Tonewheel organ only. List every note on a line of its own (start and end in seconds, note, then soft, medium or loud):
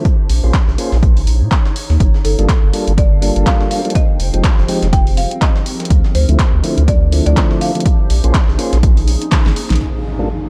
0.43 0.53 A#3 medium
0.43 0.53 C#4 medium
0.43 0.53 F4 medium
0.43 0.53 G#4 medium
0.43 0.53 C5 medium
0.78 0.97 A#3 medium
0.78 0.97 C#4 medium
0.78 0.98 F4 medium
0.78 0.98 G#4 medium
0.78 0.98 C5 loud
2.38 2.48 G3 medium
2.38 2.48 A#3 medium
2.38 2.48 D4 medium
2.38 2.48 F4 medium
2.38 2.49 A4 loud
2.73 2.93 G3 medium
2.73 2.93 A#3 medium
2.73 2.93 D4 medium
2.73 2.93 F4 medium
2.73 2.93 A4 medium
3.22 3.81 G3 medium
3.22 3.81 A#3 medium
3.22 3.82 D4 medium
3.22 3.82 F4 medium
3.22 3.82 A4 loud
3.85 3.94 G3 medium
3.85 3.94 A#3 medium
3.85 3.94 D4 medium
3.85 3.94 F4 medium
3.85 3.94 A4 medium
4.33 4.43 F3 medium
4.33 4.43 G#3 medium
4.33 4.43 C4 medium
4.33 4.44 D#4 medium
4.33 4.44 G4 medium
4.68 4.88 F3 medium
4.68 4.88 G#3 medium
4.68 4.88 C4 medium
4.68 4.88 D#4 medium
4.68 4.88 G4 loud
6.28 6.38 D3 medium
6.28 6.39 F3 medium
6.28 6.39 A3 medium
6.28 6.39 C4 medium
6.28 6.39 E4 loud
6.63 6.83 D3 medium
6.63 6.83 F3 medium
6.63 6.83 A3 medium
6.63 6.83 C4 medium
6.63 6.83 E4 medium
7.12 7.72 D3 medium
7.12 7.72 F3 medium
7.12 7.72 A3 medium
7.12 7.72 C4 medium
7.12 7.72 E4 loud
7.75 7.84 D3 medium
7.75 7.84 F3 medium
7.75 7.84 A3 medium
7.75 7.84 C4 medium
7.75 7.85 E4 medium
8.24 8.34 A#3 medium
8.24 8.34 C#4 medium
8.24 8.34 F4 medium
8.24 8.34 G#4 medium
8.24 8.34 C5 medium
8.58 8.78 A#3 medium
8.58 8.78 C#4 medium
8.58 8.78 F4 medium
8.58 8.78 G#4 medium
8.58 8.78 C5 loud
10.19 10.29 G3 medium
10.19 10.29 A#3 medium
10.19 10.29 D4 medium
10.19 10.29 F4 medium
10.19 10.29 A4 medium